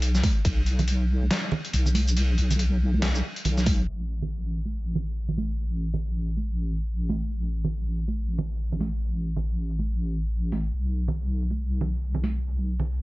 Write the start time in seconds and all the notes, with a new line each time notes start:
Already playing: B1
0.02 closed hi-hat, ride
0.15 snare, shaker
0.23 kick, open hi-hat, high conga
0.45 B1, kick, closed hi-hat, ride
0.66 closed hi-hat
0.79 closed hi-hat, low conga
0.88 closed hi-hat, ride
1.23 high conga
1.31 snare, closed hi-hat, ride
1.52 low conga
1.65 closed hi-hat
1.73 B1, closed hi-hat, ride
1.85 low conga, shaker
1.95 open hi-hat, high conga
2.08 shaker
2.17 closed hi-hat, ride
2.38 B1, closed hi-hat
2.51 closed hi-hat, low conga, shaker
2.59 closed hi-hat, ride
2.94 high conga
3.02 snare, closed hi-hat, ride
3.15 shaker
3.36 closed hi-hat
3.45 B1, closed hi-hat, ride, low conga
3.58 snare, shaker
3.66 kick, open hi-hat, high conga
3.88 A1, crash
4.22 low conga
4.65 high conga
4.95 low conga
5.28 low conga
5.37 open hi-hat, high conga
5.94 low conga
6.37 high conga
7.09 open hi-hat, high conga
7.64 low conga
8.08 high conga
8.38 low conga
8.72 low conga
8.80 open hi-hat, high conga
9.36 low conga
9.79 high conga
10.52 open hi-hat, high conga
10.74 B1
11.08 low conga
11.51 high conga
11.81 low conga
12.14 low conga
12.23 open hi-hat, high conga
12.80 low conga